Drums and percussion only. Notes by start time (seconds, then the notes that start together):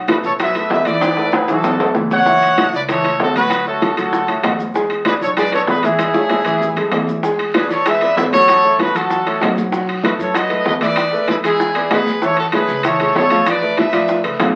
0.08 high bongo, high conga, high timbale, low timbale, maracas
0.23 high bongo, high conga, maracas
0.39 high bongo, high conga, high timbale, maracas
0.55 high bongo, high conga, high timbale, maracas
0.70 high bongo, low bongo, high conga, low timbale, maracas
0.85 high bongo, high conga, high timbale, maracas
1.01 high bongo, high conga, high timbale, maracas
1.17 high conga, high timbale, maracas
1.32 high bongo, high conga, high timbale, maracas
1.48 high bongo, high conga, high timbale, maracas
1.64 high bongo, high conga, low timbale, maracas
1.80 high bongo, high conga, low timbale, maracas
1.95 high bongo, low bongo, high conga, maracas
2.11 high conga, low timbale, maracas
2.26 high bongo, high conga, maracas
2.42 high conga, high timbale, maracas
2.58 high bongo, high conga, high timbale, low timbale, maracas
2.74 high bongo, high conga, maracas
2.89 high bongo, high conga, high timbale, maracas
3.04 high bongo, high conga, high timbale, maracas
3.20 high bongo, low bongo, high conga, low timbale, maracas
3.35 high bongo, high conga, high timbale, maracas
3.50 high bongo, high conga, high timbale, maracas
3.67 high conga, maracas
3.82 high bongo, high conga, high timbale, low timbale, maracas
3.97 high bongo, high conga, high timbale, maracas
4.13 high bongo, high conga, maracas
4.28 high bongo, high conga, high timbale, maracas
4.43 high bongo, low bongo, high conga, high timbale, low timbale, maracas
4.59 high conga, maracas
4.75 high bongo, maracas
4.89 high conga, high timbale, maracas
5.05 high bongo, high conga, high timbale, low timbale, maracas
5.21 high bongo, high conga, maracas
5.37 high bongo, high conga, high timbale, maracas
5.52 high bongo, high conga, high timbale, maracas
5.67 high bongo, low bongo, high conga, low timbale, maracas
5.83 high bongo, high conga, high timbale, maracas
5.99 high bongo, high timbale, maracas
6.14 high bongo, high conga, maracas
6.29 high bongo, high conga, high timbale, low timbale, maracas
6.45 low bongo, high conga, high timbale, maracas
6.61 low bongo, high conga, maracas
6.76 low bongo, high conga, high timbale, maracas
6.92 high conga, high timbale, low timbale, maracas
7.07 low bongo, high conga, maracas
7.23 high bongo, high conga, long guiro, maracas
7.39 high conga, high timbale, maracas
7.54 high bongo, high conga, high timbale, low timbale, short guiro, maracas
7.70 high bongo, high conga, short guiro, maracas
7.86 high bongo, high conga, high timbale, long guiro, maracas
8.01 high bongo, high conga, high timbale, maracas
8.17 high bongo, low bongo, high conga, low timbale, short guiro, maracas
8.32 high bongo, high conga, high timbale, short guiro, maracas
8.48 high bongo, high timbale, maracas
8.63 high conga, maracas
8.79 high bongo, high conga, high timbale, low timbale, short guiro, maracas
8.95 high bongo, high conga, high timbale, short guiro, maracas
9.10 high bongo, high conga, long guiro, maracas
9.26 high bongo, high conga, high timbale, maracas
9.42 high bongo, low bongo, high conga, high timbale, low timbale, short guiro, maracas
9.57 high conga, short guiro, maracas
9.72 high bongo, high conga, long guiro, maracas
9.88 high conga, high timbale, maracas
10.03 high bongo, high conga, high timbale, low timbale, short guiro, maracas
10.19 high bongo, high conga, short guiro, maracas
10.35 high bongo, high conga, high timbale, long guiro, maracas
10.50 high bongo, high conga, high timbale, maracas
10.65 high bongo, low bongo, high conga, low timbale, short guiro, maracas
10.80 high bongo, high conga, high timbale, short guiro, maracas
10.96 high bongo, high timbale, maracas
11.13 high conga, maracas
11.28 high bongo, high conga, high timbale, low timbale, short guiro, maracas
11.44 high bongo, high conga, high timbale, short guiro, maracas
11.60 high bongo, high conga, maracas
11.75 high bongo, high conga, high timbale, maracas
11.90 high bongo, low bongo, high conga, high timbale, low timbale, short guiro, maracas
12.06 high conga, short guiro, maracas
12.22 high bongo, high conga, long guiro, maracas
12.37 high conga, high timbale, maracas
12.52 high bongo, high conga, high timbale, low timbale, short guiro, maracas
12.68 high bongo, high conga, short guiro, maracas
12.83 high bongo, high conga, high timbale, long guiro, maracas
13.00 high bongo, high conga, high timbale, maracas
13.15 high bongo, low bongo, high conga, low timbale, short guiro, maracas
13.30 high bongo, high conga, high timbale, short guiro, maracas
13.46 high bongo, high timbale, long guiro, maracas
13.62 high conga, maracas
13.77 high bongo, high conga, high timbale, low timbale, short guiro, maracas
13.93 high bongo, high conga, high timbale, short guiro, maracas
14.08 high bongo, high conga, long guiro, maracas
14.24 high bongo, high conga, high timbale, maracas
14.39 high bongo, low bongo, high conga, high timbale, low timbale, short guiro, maracas